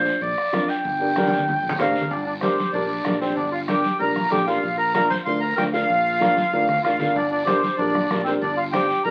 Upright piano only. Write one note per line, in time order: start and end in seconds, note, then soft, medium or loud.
0.00 0.12 D4 medium
0.00 0.13 F4 medium
0.00 0.13 C5 medium
0.53 0.69 D4 medium
0.53 0.70 F4 medium
0.53 0.70 A#4 medium
1.00 1.06 D4 medium
1.00 1.06 G4 medium
1.00 1.06 A#4 medium
1.17 1.38 D4 medium
1.17 1.39 G4 medium
1.17 1.39 A#4 medium
1.79 1.96 D4 medium
1.79 1.96 G4 medium
1.79 1.96 C5 medium
2.42 2.53 D4 medium
2.42 2.53 G4 medium
2.42 2.54 A#4 medium
2.74 2.85 D4 medium
2.74 2.85 G4 medium
2.74 2.85 A#4 medium
3.05 3.11 D4 medium
3.05 3.11 G4 medium
3.05 3.11 A#4 medium
3.21 3.38 D4 medium
3.21 3.38 G4 medium
3.21 3.38 C5 medium
3.68 3.79 D4 medium
3.68 3.80 G4 medium
3.68 3.80 A#4 medium
3.99 4.11 D4 medium
3.99 4.11 G4 medium
3.99 4.11 A#4 medium
4.30 4.37 D4 medium
4.30 4.37 G4 medium
4.30 4.37 A4 medium
4.46 4.63 D4 medium
4.46 4.63 G4 medium
4.46 4.63 A#4 medium
4.95 5.06 D4 medium
4.95 5.06 F4 medium
4.95 5.06 A#4 medium
5.26 5.37 D4 medium
5.26 5.38 F4 medium
5.26 5.38 A#4 medium
5.57 5.63 D4 medium
5.57 5.64 F4 medium
5.57 5.64 A#4 medium
5.73 5.90 D4 medium
5.73 5.90 F4 medium
5.73 5.90 A#4 medium
6.20 6.32 D4 medium
6.20 6.32 F4 medium
6.20 6.32 A#4 medium
6.53 6.64 D4 medium
6.53 6.64 F4 medium
6.53 6.64 A#4 medium
6.85 6.90 D4 medium
6.85 6.91 F4 medium
6.85 6.91 A#4 medium
7.01 7.16 D4 medium
7.01 7.16 F4 medium
7.01 7.17 A#4 medium
7.48 7.59 D4 medium
7.48 7.59 G4 medium
7.48 7.59 A#4 medium
7.79 7.90 D4 medium
7.79 7.90 G4 medium
7.79 7.91 A#4 medium
8.10 8.16 D4 medium
8.10 8.16 G4 medium
8.10 8.16 A#4 medium
8.26 8.43 D4 medium
8.26 8.43 G4 medium
8.26 8.43 A#4 medium
8.73 8.85 D4 medium
8.73 8.85 G4 medium
8.73 8.85 C5 medium
9.05 9.11 D4 medium
9.05 9.11 G4 medium
9.05 9.11 A#4 medium